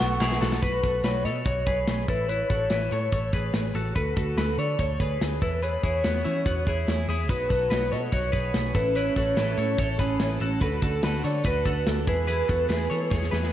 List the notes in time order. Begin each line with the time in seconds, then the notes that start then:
Already playing: F#4 A4 F#5
0.00 B1 A3 B3 F#4 C#6, snare, clap
0.19 B1 E3 A3 B3 E4 F#4 G#4 B5, snare, clap
0.32 snare
0.40 B1 A3 B3 F#4 A4, snare
0.52 snare
0.62 B1 F#4 B4, kick, closed hi-hat
0.83 B1 F#4 A4, kick, closed hi-hat
1.03 B1 F#4 B4 C#5, snare, closed hi-hat
1.24 B2 A4 C#5 D#5, snare, closed hi-hat
1.45 B1 F#4 C#5, kick, closed hi-hat
1.66 B1 G#4 B4, kick, closed hi-hat
1.88 B1, snare, closed hi-hat
2.08 A1 E4 A4 B4, kick, closed hi-hat
2.28 E4 B4 C#5, closed hi-hat
2.50 A1 F#4 A4 C#5, kick, closed hi-hat
2.70 A1 E4 B4, snare, closed hi-hat
2.91 A2 A4 C#5, closed hi-hat
3.12 A1 A4 C#5, kick, closed hi-hat
3.33 A1 G#4 B4, kick, closed hi-hat
3.54 A1, snare, closed hi-hat
3.75 A1 F#4 A4, closed hi-hat
3.96 D2 F#4 A4 B4, kick, closed hi-hat
4.16 D2 F#4 A4, kick, closed hi-hat
4.37 D2 F#4 B4, snare, closed hi-hat
4.58 D3 A4 C#5 D5, closed hi-hat
4.79 D2 A4 C#5, kick, closed hi-hat
5.00 D2 G#4 B4, kick, closed hi-hat
5.21 D2, snare, closed hi-hat
5.42 E2 E4 A4 B4, kick, closed hi-hat
5.63 G#4 B4 C#5, closed hi-hat
5.83 E2 E4 G#4 C#5, kick, closed hi-hat
6.04 E2 B3 F#4, snare, closed hi-hat
6.24 E3 C#4 E4, closed hi-hat
6.46 E2 B3 F#4, kick, closed hi-hat
6.67 E2 E4 G#4, kick, closed hi-hat
6.88 E2, snare, closed hi-hat
7.08 E2 E4 G#4, open hi-hat
7.28 B1 B3 D#4 F#4 B4 C#5, kick, closed hi-hat
7.49 B1 D#4 F#4 A4 C#5, kick, closed hi-hat
7.70 B1 B3 D#4 F#4 B4 C#5, snare, closed hi-hat
7.91 B2 D#4 F#4 A4 C#5 D#5, closed hi-hat
8.12 B1 B3 D#4 F#4 C#5, kick, closed hi-hat
8.32 B1 D#4 F#4 G#4 B4 C#5, kick, closed hi-hat
8.54 B1 B3 D#4 F#4 C#5, snare, closed hi-hat
8.75 A1 A3 C#4 E4 A4 B4, kick, closed hi-hat
8.95 A2 E3 A3 C#4 E4 A4 B4 C#5, closed hi-hat
9.16 A1 A3 C#4 E4 F#4 A4 C#5, kick, closed hi-hat
9.36 A1 A2 E3 A3 C#4 E4 A4 B4, snare, closed hi-hat
9.57 A2 A3 C#4 E4 A4 C#5, closed hi-hat
9.77 A1 A3 C#4 E4 A4 C#5, kick, closed hi-hat
9.98 A1 A3 C#4 E4 G#4 A4 B4, kick, closed hi-hat
10.19 A1 A2 E3 A3 C#4 E4 A4, snare, closed hi-hat
10.40 A1 A3 C#4 E4 F#4 A4, closed hi-hat
10.60 D2 D3 D4 F#4 A4 B4, kick, closed hi-hat
10.81 D2 D4 F#4 A4, kick, closed hi-hat
11.03 D2 D3 D4 F#4 A4 B4, snare, closed hi-hat
11.24 D3 D4 F#4 A4 C#5 D5, snare, closed hi-hat
11.44 D2 D3 D4 F#4 B4, kick, closed hi-hat
11.48 A4
11.65 D2 F#4 A4, kick, closed hi-hat
11.70 D4
11.87 D2 D3 D4 F#4 A4, snare, closed hi-hat
12.07 E2 G#3 B3 E4 G#4 B4, kick, closed hi-hat
12.27 E2 E3 G#3 B3 E4 G#4 B4, closed hi-hat
12.48 E2 G#3 B3 E4 F#4 G#4 A4, kick, closed hi-hat
12.68 E2 E3 G#3 B3 E4 G#4 B4, snare, closed hi-hat
12.89 E3 G#3 B3 E4 G#4 A4 C#5, closed hi-hat
13.11 E2 G#3 B3 E4 G#4 C#5, kick, snare
13.22 snare
13.31 E2 G#3 B3 E4 G#4 B4, snare
13.43 snare